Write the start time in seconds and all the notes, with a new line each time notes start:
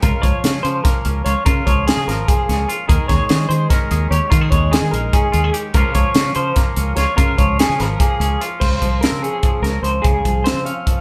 Already playing: G#3 C#4
0.02 C#2 C#3 F4 A#4, kick, closed hi-hat
0.22 C#2 F3 C#5, kick, closed hi-hat
0.44 C#3 C#4, snare, closed hi-hat
0.63 C#3 F3 C5, closed hi-hat
0.84 A#3 A#4, kick, snare, closed hi-hat
1.05 C#2 C#4, closed hi-hat
1.25 C#2 F4 C#5, closed hi-hat
1.45 C#3 F4 A#4, kick, closed hi-hat
1.66 C#2 F3 C#5, kick, closed hi-hat
1.87 C#4 G#4, snare, closed hi-hat
1.97 C#3
2.07 G#1 F3 A#4, snare, closed hi-hat
2.28 A#3 G#4, kick, closed hi-hat
2.49 C#2 C#4, snare, closed hi-hat
2.69 F4, closed hi-hat
2.88 D#2 D#3 G#4 A#4, kick, closed hi-hat
3.08 D#2 G#3 C#5, kick, snare, closed hi-hat
3.29 D#3 G#4, snare, closed hi-hat
3.49 D#3 G#3 C5, closed hi-hat
3.70 C#4 A#4, kick, snare, closed hi-hat
3.91 D#2 G#4, closed hi-hat
4.11 D#2 G4 C#5, closed hi-hat
4.30 D#3 F4 A#4, kick, closed hi-hat
4.41 G#4
4.51 D#2 G#3 C#5, kick, closed hi-hat
4.71 G#4, snare, closed hi-hat
4.82 D#3
4.91 A#1 G#3 A#4, closed hi-hat
5.13 C#4 G#4, kick, closed hi-hat
5.32 D#2 F4, closed hi-hat
5.44 G#4
5.54 G4, closed hi-hat
5.74 C#2 C#3 F3 A#3 C#4 F4 A#4, kick, closed hi-hat
5.95 C#2 F3 C#5, kick, closed hi-hat
6.15 C#3 C#4, snare, closed hi-hat
6.35 C#3 F3 C5, closed hi-hat
6.56 A#3 A#4, kick, snare, closed hi-hat
6.76 C#2 C#4, closed hi-hat
6.96 C#2 F4 C#5, snare, closed hi-hat
7.17 C#3 F4 A#4, kick, closed hi-hat
7.37 C#2 F3 C#5, kick, closed hi-hat
7.59 C#4 G#4, snare, closed hi-hat
7.69 C#3
7.79 G#1 F3 A#4, snare, closed hi-hat
8.00 A#3 G#4, kick, closed hi-hat
8.20 C#2 C#4, closed hi-hat
8.41 F4, closed hi-hat
8.60 C#2 C#3 C5, kick, crash
8.81 C2 F3, kick, closed hi-hat
9.01 C4 A#4, snare, closed hi-hat
9.12 C#3
9.22 C#4 G#4, closed hi-hat
9.42 F3, kick, closed hi-hat
9.62 C#2 C#4 A#4, snare, closed hi-hat
9.82 C#2 F3 C5, closed hi-hat
10.02 C#2 C#3 G#4, kick, closed hi-hat
10.25 C2 F3, kick, closed hi-hat
10.44 C4 C5, snare, closed hi-hat
10.54 C#3
10.65 C#4 F5, closed hi-hat
10.86 F3, kick, closed hi-hat